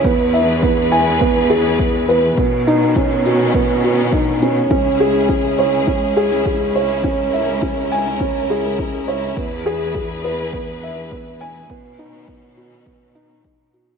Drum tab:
SH |x-xxx-xxx-xxx-xx|x-xxx-xxx-xxx-xx|x-xxx-xxx-xxx-xx|x-xxx-xxx-xxx-xx|
BD |o---o---o---o---|o---o---o---o---|o---o---o---o---|o---o---o---o---|

SH |x-xxx-xxx-xxx-xx|x-xxx-xxx-xxx-xx|
BD |o---o---o---o---|o---o---o---o---|